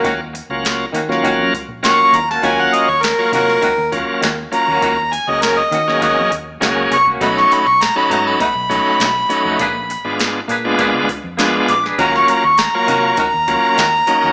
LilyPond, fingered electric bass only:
\new Staff \with { instrumentName = "Fingered electric bass" } { \clef bass \time 4/4 \key ees \minor \tempo 4 = 100 ees,8. des,8. ees8. ges,16 r16 bes,,8. ees,8 | ees,8 r16 ees,8 r16 c8 r16 ees,8 r16 ees,8 r16 ees,16 | ees,8. des,8. ees8. ges,16 ees,8 des,8 c,8 | b,,8 r16 b,,8 r16 aes,8 r16 b,,8 r16 b,,8 r16 f,16 |
bes,,8. aes,,8. bes,8. d,16 r16 f,8. bes,,8 | ees,8 r16 ees,8 r16 c8 r16 ees,8 r16 ees,8 r16 ees,16 | }